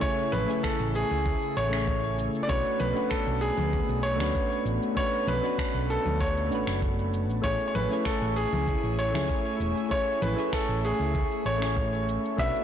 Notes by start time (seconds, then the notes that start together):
Already playing: C#3 A3 E4 G#4 C#5 G#5
0.00 A3 C#4 E4 G#4 C#5, kick, shaker
0.19 shaker
0.32 A1 B4, low conga, shaker
0.47 A3 C#4 E4 G#4, shaker
0.51 C#5
0.63 A4, finger snap, kick, shaker
0.80 A1, shaker
0.95 G#4, shaker
1.11 C#2, shaker
1.26 kick, shaker
1.42 shaker
1.57 A1 C#5, shaker
1.69 A3 C#4 E4, finger snap
1.73 G#4 C#5, shaker
1.88 kick, shaker
2.04 shaker
2.19 shaker
2.35 shaker
2.43 D5
2.47 B1 A3 B3 C#4 D4 F#4 B4 C#5, kick, shaker
2.66 shaker
2.80 B1 B4, low conga, shaker
2.94 A3 C#4 D4 F#4 B4, shaker
3.10 A4, finger snap, kick, shaker
3.27 B1, shaker
3.41 G#4, shaker
3.58 D2, low conga, shaker
3.73 kick, shaker
3.89 B1, shaker
4.03 C#5, shaker
4.16 A3 C#4 D4
4.20 D2 F#4 B4, finger snap, low conga, shaker
4.35 kick, shaker
4.52 shaker
4.65 A1, shaker
4.82 shaker
4.95 A3 C#4 D4 F#4 B4 C#5, kick, shaker
5.13 shaker
5.27 B1 B4, low conga, shaker
5.42 A3 C#4 D4 F#4 B4, shaker
5.59 finger snap, kick, shaker
5.75 B1, shaker
5.90 A4, shaker
6.05 D2, low conga, shaker
6.20 C#5, kick, shaker
6.37 shaker
6.47 A3 C#4
6.51 A1 D4 F#4 B4, shaker
6.67 F#1, finger snap, shaker
6.82 kick, shaker
6.99 shaker
7.13 shaker
7.30 A1, shaker
7.42 A1 A3 C#4 E4 G#4 C#5 G#5, kick, shaker
7.46 C#5
7.61 shaker
7.68 C#5
7.75 A1 B4, low conga, shaker
7.89 A3 C#4 E4 G#4, shaker
7.93 C#5
8.05 A4, finger snap, kick, shaker
8.22 A1, shaker
8.36 G#4, shaker
8.53 C#2, low conga, shaker
8.68 kick, shaker
8.84 A1, shaker
8.99 C#5, shaker
9.10 C#2 A3 C#4 E4
9.15 G#4 C#5, finger snap, low conga, shaker
9.29 kick, shaker
9.46 shaker
9.60 E1, shaker
9.77 shaker
9.89 A3 C#4 E4 G#4 C#5, kick, shaker
9.93 C#5
10.08 shaker
10.22 A1 B4, low conga, shaker
10.36 A3 C#4 E4 G#4 C#5, shaker
10.53 A4, finger snap, kick, shaker
10.69 A1, shaker
10.85 G#4, shaker
11.00 C#2, shaker
11.15 kick, shaker
11.32 shaker
11.46 A1 C#5, shaker
11.58 A3 C#4
11.62 E4 G#4 C#5, finger snap, shaker
11.77 kick, shaker
11.94 shaker
12.09 shaker
12.25 shaker
12.37 B1 A3 B3 C#4 D4 F#4 B4 E5, kick, shaker
12.55 shaker